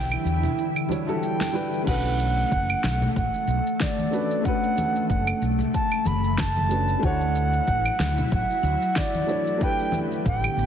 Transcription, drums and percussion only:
0.12 claves, shaker
0.26 shaker
0.43 low conga, shaker
0.59 shaker
0.76 claves, shaker
0.89 high conga, shaker
1.09 shaker
1.23 shaker
1.40 snare, high conga
1.56 shaker
1.74 shaker
1.87 kick, crash, shaker
2.05 shaker
2.19 shaker
2.38 shaker
2.52 kick, shaker
2.70 claves, shaker
2.84 snare, shaker
3.02 low conga, shaker
3.16 kick, shaker
3.34 shaker
3.48 shaker
3.67 shaker
3.80 kick, snare, shaker
3.98 high conga, shaker
4.13 shaker
4.31 shaker
4.45 kick, shaker
4.63 shaker
4.77 high conga, shaker
4.96 shaker
5.10 kick, shaker
5.27 claves, shaker
5.42 shaker
5.59 low conga, shaker
5.74 kick, shaker
5.92 claves, shaker
6.05 high conga, shaker
6.24 shaker
6.38 kick, snare, shaker
6.56 high conga, shaker
6.70 shaker
6.88 shaker
7.03 kick, shaker
7.21 shaker
7.35 shaker
7.53 shaker
7.67 kick, shaker
7.85 claves, shaker
8.00 snare, shaker
8.18 low conga, shaker
8.32 kick, shaker
8.50 shaker
8.64 shaker
8.82 shaker
8.96 kick, snare, shaker
9.14 high conga, shaker
9.29 shaker
9.47 shaker
9.61 kick, shaker
9.79 shaker
9.92 high conga, shaker
10.12 shaker
10.26 kick, shaker
10.44 claves, shaker
10.59 shaker

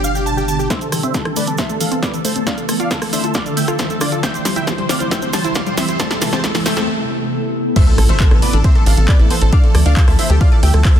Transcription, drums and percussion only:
0.04 cabasa
0.15 cabasa
0.27 cabasa
0.38 cabasa
0.48 cabasa
0.59 cabasa
0.70 kick, snare, closed hi-hat, cabasa
0.81 closed hi-hat, cabasa
0.92 cross-stick, open hi-hat, cabasa
1.03 closed hi-hat, cabasa
1.14 kick, snare, closed hi-hat, cabasa
1.25 cross-stick, closed hi-hat
1.36 open hi-hat, cabasa
1.47 closed hi-hat, cabasa
1.57 kick, snare, closed hi-hat, cabasa
1.69 closed hi-hat, cabasa
1.81 open hi-hat, cabasa
1.92 closed hi-hat, cabasa
2.03 kick, snare, closed hi-hat, cabasa
2.14 closed hi-hat, cabasa
2.25 open hi-hat, cabasa
2.36 closed hi-hat, cabasa
2.47 kick, snare, closed hi-hat, cabasa
2.58 closed hi-hat, cabasa
2.69 cross-stick, open hi-hat, cabasa
2.80 closed hi-hat, cabasa
2.91 kick, snare, closed hi-hat, cabasa
3.02 cross-stick, open hi-hat, cabasa
3.13 open hi-hat, cabasa
3.24 closed hi-hat, cabasa
3.34 kick, snare, closed hi-hat, cabasa
3.46 closed hi-hat, cabasa
3.57 open hi-hat, cabasa
3.68 cross-stick, closed hi-hat, cabasa
3.79 kick, snare, closed hi-hat, cabasa
3.90 closed hi-hat, cabasa
4.01 cross-stick, open hi-hat, cabasa
4.12 closed hi-hat, cabasa
4.23 kick, snare, closed hi-hat, cabasa
4.34 closed hi-hat, cabasa
4.45 snare, open hi-hat, cabasa
4.56 closed hi-hat, cabasa
4.67 kick, snare, closed hi-hat, cabasa
4.78 closed hi-hat
4.89 snare, open hi-hat, cabasa
5.00 closed hi-hat, cabasa
5.11 kick, snare, closed hi-hat, cabasa
5.22 closed hi-hat, cabasa
5.33 snare, open hi-hat, cabasa
5.44 closed hi-hat, cabasa
5.55 kick, snare, closed hi-hat, cabasa
5.66 closed hi-hat, cabasa
5.77 snare, open hi-hat, cabasa
5.88 closed hi-hat, cabasa
5.99 kick, snare, closed hi-hat, cabasa
6.11 snare, closed hi-hat, cabasa
6.22 snare, open hi-hat, cabasa
6.32 snare, closed hi-hat, cabasa
6.44 kick, snare, closed hi-hat, cabasa
6.55 snare, open hi-hat, cabasa
6.66 snare, open hi-hat, cabasa
6.77 snare, closed hi-hat, cabasa
7.76 kick, closed hi-hat, crash
7.87 closed hi-hat
7.98 cross-stick, open hi-hat
8.09 closed hi-hat
8.20 kick, clap, closed hi-hat
8.31 cross-stick, closed hi-hat
8.42 open hi-hat
8.53 closed hi-hat
8.64 kick, closed hi-hat
8.75 closed hi-hat
8.86 open hi-hat
8.97 closed hi-hat
9.08 kick, clap, closed hi-hat
9.19 closed hi-hat
9.30 open hi-hat
9.41 closed hi-hat
9.53 kick, closed hi-hat
9.64 closed hi-hat
9.75 cross-stick, open hi-hat
9.86 closed hi-hat
9.97 kick, clap, closed hi-hat
10.08 cross-stick, open hi-hat
10.19 open hi-hat
10.30 closed hi-hat
10.41 kick, closed hi-hat
10.52 closed hi-hat
10.63 open hi-hat
10.74 cross-stick, closed hi-hat
10.85 kick, clap, closed hi-hat
10.96 closed hi-hat

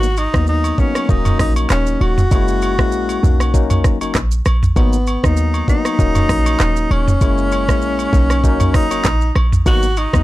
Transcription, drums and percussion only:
0.03 shaker
0.17 high agogo, shaker
0.34 kick, cross-stick, shaker
0.47 shaker
0.64 high agogo, shaker
0.78 kick, shaker
0.95 cross-stick, high agogo, shaker
1.09 kick, shaker
1.25 mid tom, high agogo, shaker
1.39 kick, cross-stick, open hi-hat, shaker
1.56 high agogo, shaker
1.70 cross-stick, clap, shaker
1.86 shaker
2.01 high agogo
2.18 mid tom, shaker
2.31 kick, high agogo, shaker
2.48 shaker
2.62 high agogo, shaker
2.79 kick, cross-stick, shaker
2.92 shaker
3.09 high agogo, shaker
3.23 mid tom, shaker
3.40 cross-stick, high agogo, shaker
3.54 kick, shaker
3.70 mid tom, high agogo, shaker
3.84 kick, cross-stick, shaker
4.01 high agogo, shaker
4.15 kick, cross-stick, clap, shaker
4.31 shaker
4.45 cross-stick, high agogo, shaker
4.63 mid tom, shaker
4.76 kick, high agogo, shaker
4.93 shaker
5.07 high agogo, shaker
5.24 kick, cross-stick, shaker
5.37 shaker
5.54 high agogo, shaker
5.68 kick, shaker
5.85 cross-stick, high agogo, shaker
5.99 kick, shaker
6.15 mid tom, high agogo, shaker
6.29 kick, cross-stick, open hi-hat, shaker
6.46 high agogo, shaker
6.60 cross-stick, clap, shaker
6.76 shaker
6.91 high agogo
7.08 mid tom, shaker
7.21 kick, high agogo, shaker
7.38 shaker
7.52 high agogo, shaker
7.69 kick, cross-stick, shaker
7.82 shaker
7.99 high agogo, shaker
8.13 kick, shaker
8.30 cross-stick, high agogo, shaker
8.44 kick, shaker
8.60 mid tom, high agogo, shaker
8.74 kick, cross-stick, open hi-hat, shaker
8.91 high agogo, shaker
9.05 kick, cross-stick, clap, shaker
9.21 shaker
9.35 cross-stick, high agogo
9.52 mid tom, shaker
9.66 kick, high agogo, shaker
9.83 shaker
9.96 high agogo, shaker
10.13 kick, cross-stick, shaker

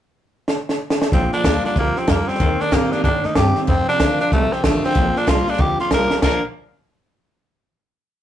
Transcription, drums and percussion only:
0.48 snare
0.69 snare
0.90 snare
1.02 snare
1.12 kick, snare
1.32 snare
1.44 kick, snare, hi-hat pedal
1.64 snare
1.76 kick, snare
1.96 snare
2.08 kick, snare, hi-hat pedal
2.28 snare
2.35 snare
2.40 kick, snare
2.60 snare
2.72 kick, snare, hi-hat pedal
2.92 snare
3.04 kick, snare
3.23 snare
3.35 kick, snare, hi-hat pedal
3.55 snare
3.68 kick, snare
3.88 snare
4.00 kick, snare, hi-hat pedal
4.20 snare
4.32 kick, snare
4.52 snare
4.64 kick, snare, hi-hat pedal
4.83 snare
4.90 snare
4.96 kick, snare
5.16 snare
5.28 kick, snare, hi-hat pedal
5.47 snare
5.53 snare
5.59 kick, snare
5.79 snare
5.91 kick, snare, hi-hat pedal
6.10 snare
6.22 kick, snare, crash

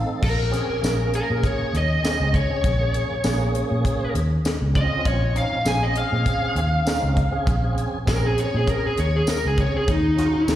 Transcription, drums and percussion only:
0.23 kick, crash
0.53 snare, closed hi-hat
0.84 snare, closed hi-hat, tambourine
1.13 closed hi-hat
1.44 kick, closed hi-hat
1.74 closed hi-hat
2.05 snare, closed hi-hat, tambourine
2.34 kick, closed hi-hat
2.64 kick, closed hi-hat
2.94 closed hi-hat
3.24 snare, closed hi-hat, tambourine
3.55 closed hi-hat
3.85 kick, closed hi-hat
4.15 closed hi-hat
4.45 snare, closed hi-hat, tambourine
4.75 kick, closed hi-hat
5.05 kick, closed hi-hat
5.36 closed hi-hat
5.66 snare, closed hi-hat, tambourine
5.95 closed hi-hat
6.26 kick, closed hi-hat
6.56 closed hi-hat
6.87 snare, closed hi-hat, tambourine
7.17 kick, closed hi-hat
7.47 kick, closed hi-hat
7.78 closed hi-hat
8.07 kick, snare, closed hi-hat, tambourine
8.38 closed hi-hat
8.67 kick, closed hi-hat
8.97 closed hi-hat
9.27 snare, closed hi-hat, tambourine
9.57 kick, closed hi-hat
9.88 kick, closed hi-hat
10.18 snare, closed hi-hat
10.48 snare, closed hi-hat, tambourine

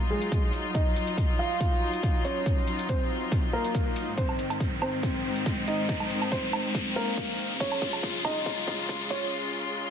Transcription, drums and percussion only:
0.22 closed hi-hat
0.32 kick, closed hi-hat
0.53 open hi-hat
0.75 kick, closed hi-hat
0.96 closed hi-hat
1.07 closed hi-hat
1.18 kick, closed hi-hat
1.60 kick, closed hi-hat
1.93 closed hi-hat
2.03 kick, closed hi-hat
2.25 open hi-hat
2.46 kick, closed hi-hat
2.68 closed hi-hat
2.79 closed hi-hat
2.89 kick, closed hi-hat
3.32 kick, closed hi-hat
3.65 closed hi-hat
3.75 kick, closed hi-hat
3.96 open hi-hat
4.18 kick, closed hi-hat
4.29 low woodblock
4.39 closed hi-hat
4.50 closed hi-hat, low woodblock
4.60 kick, closed hi-hat
4.82 low woodblock
5.03 kick, closed hi-hat
5.36 closed hi-hat
5.46 kick, closed hi-hat
5.68 open hi-hat
5.89 kick, closed hi-hat
6.00 low woodblock
6.10 closed hi-hat
6.22 closed hi-hat, low woodblock
6.32 kick, closed hi-hat
6.53 low woodblock
6.75 kick, closed hi-hat
7.07 closed hi-hat
7.18 kick, closed hi-hat
7.39 open hi-hat
7.60 kick, closed hi-hat
7.72 low woodblock
7.82 kick, closed hi-hat
7.93 closed hi-hat, low woodblock
8.03 kick, closed hi-hat
8.25 kick, low woodblock
8.46 kick, closed hi-hat
8.68 kick
8.79 closed hi-hat
8.89 kick, closed hi-hat
9.10 kick, open hi-hat

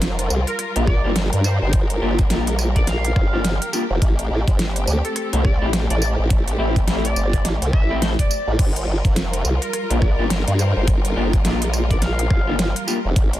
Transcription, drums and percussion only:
0.02 snare, closed hi-hat
0.19 closed hi-hat
0.30 tambourine
0.47 closed hi-hat
0.59 cross-stick, closed hi-hat
0.76 closed hi-hat
0.87 kick, cross-stick
1.16 snare, closed hi-hat
1.33 closed hi-hat
1.44 cross-stick, tambourine
1.73 kick, closed hi-hat
1.90 closed hi-hat
2.19 kick, closed hi-hat
2.30 snare, closed hi-hat
2.47 closed hi-hat
2.59 cross-stick, tambourine
2.76 kick, closed hi-hat
2.87 snare, closed hi-hat
3.05 closed hi-hat
3.16 kick, cross-stick
3.44 snare, closed hi-hat
3.62 closed hi-hat
3.73 tambourine
4.02 kick, closed hi-hat
4.19 closed hi-hat
4.48 kick, closed hi-hat
4.59 snare, closed hi-hat
4.76 closed hi-hat
4.88 tambourine
5.05 closed hi-hat
5.16 cross-stick, closed hi-hat
5.33 closed hi-hat
5.45 kick, cross-stick
5.73 snare, closed hi-hat
5.90 closed hi-hat
6.02 cross-stick, tambourine
6.30 kick, closed hi-hat
6.48 closed hi-hat
6.76 kick, closed hi-hat
6.88 snare, closed hi-hat
7.05 closed hi-hat
7.16 cross-stick, tambourine
7.26 cross-stick
7.33 kick, cross-stick, closed hi-hat
7.45 snare, closed hi-hat
7.62 closed hi-hat
7.73 kick, cross-stick
8.02 snare, closed hi-hat
8.19 kick, closed hi-hat
8.31 tambourine
8.59 kick, closed hi-hat, crash
8.76 closed hi-hat
9.05 kick, closed hi-hat
9.16 snare, closed hi-hat
9.34 closed hi-hat
9.45 tambourine
9.62 closed hi-hat
9.73 cross-stick, closed hi-hat
9.91 closed hi-hat
10.02 kick, cross-stick
10.30 snare, closed hi-hat
10.48 closed hi-hat
10.59 cross-stick, tambourine
10.88 kick, closed hi-hat
11.05 closed hi-hat
11.33 kick, closed hi-hat
11.45 snare, closed hi-hat
11.62 closed hi-hat
11.73 cross-stick, tambourine
11.91 kick, closed hi-hat
12.02 snare, closed hi-hat
12.19 closed hi-hat
12.30 kick, cross-stick
12.59 snare, closed hi-hat
12.76 closed hi-hat
12.88 tambourine
13.16 kick, closed hi-hat
13.33 closed hi-hat

